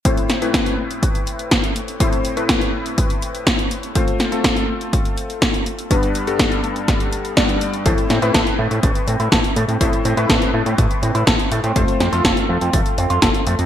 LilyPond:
<<
  \new Staff \with { instrumentName = "Clean electric guitar" } { \time 4/4 \key a \minor \tempo 4 = 123 r1 | r1 | r1 | r1 |
a16 r16 c'16 e'16 a'16 r16 a16 c'16 a16 r16 c'16 e'16 a'16 r16 a16 c'16 | a16 r16 c'16 e'16 a'16 r16 a16 c'16 a16 r16 c'16 e'16 a'16 r16 a16 c'16 | a16 r16 c'16 f'16 a'16 r16 a16 c'16 a16 r16 c'16 f'16 a'16 r16 a16 c'16 | }
  \new Staff \with { instrumentName = "Electric grand piano" } { \time 4/4 \key a \minor <a, a c' e' c''>8. <a, a c' e' b'>2.~ <a, a c' e' b'>16 | <a, a c' e' c''>8. <a, a c' e' b'>2.~ <a, a c' e' b'>16 | <a c' f' c''>8. <a c' f' a'>2.~ <a c' f' a'>16 | <g, g b d' b'>8. <g, g b d' a'>2~ <g, g b d' a'>16 <g, g b d' d''>4 |
<a, a c' e' c''>8. <a, a c' e' b'>2.~ <a, a c' e' b'>16 | <a, a c' e' c''>8. <a, a c' e' b'>2.~ <a, a c' e' b'>16 | <a c' f' c''>8. <a c' f' a'>2.~ <a c' f' a'>16 | }
  \new Staff \with { instrumentName = "Analog synth bass" } { \clef bass \time 4/4 \key a \minor r1 | r1 | r1 | r1 |
a,,16 r16 a,16 a,16 a,,16 r16 a,16 a,16 a,,16 r16 a,16 a,16 a,,16 r16 a,16 a,16 | a,,16 r16 a,16 a,16 a,,16 r16 a,16 a,16 a,,16 r16 a,16 a,16 a,,16 r16 a,16 a,16 | f,,16 r16 f,16 f,16 f,,16 r16 f,16 f,16 f,,16 r16 f,16 f,16 f,,16 r16 f,16 f,16 | }
  \new DrumStaff \with { instrumentName = "Drums" } \drummode { \time 4/4 <hh bd>16 hh16 <hh sn>16 hh16 <hh bd sn>16 hh8 hh16 <hh bd>16 hh16 hh16 hh16 <hh bd sn>16 hh16 hh16 hh16 | <hh bd>16 hh16 hh16 hh16 <hh bd sn>16 hh8 hh16 <hh bd>16 hh16 hh16 hh16 <hh bd sn>16 hh16 hh16 hh16 | <hh bd>16 hh16 <hh sn>16 hh16 <hh bd sn>16 hh8 hh16 <hh bd>16 hh16 hh16 hh16 <hh bd sn>16 hh16 hh16 hh16 | <hh bd>16 hh16 hh16 hh16 <hh bd sn>16 hh16 hh16 hh16 <hh bd sn>16 hh16 hh16 hh16 <hh bd sn>16 hh16 hh16 hh16 |
<hh bd>16 hh16 <hh sn>16 hh16 <hh bd sn>16 hh8 hh16 <hh bd>16 hh16 hh16 hh16 <hh bd sn>16 hh16 hh16 hh16 | <hh bd>16 hh16 hh16 hh16 <hh bd sn>16 hh8 hh16 <hh bd>16 hh16 hh16 hh16 <hh bd sn>16 hh16 hh16 hh16 | <hh bd>16 hh16 <hh sn>16 hh16 <hh bd sn>16 hh8 hh16 <hh bd>16 hh16 hh16 hh16 <hh bd sn>16 hh16 hh16 hh16 | }
>>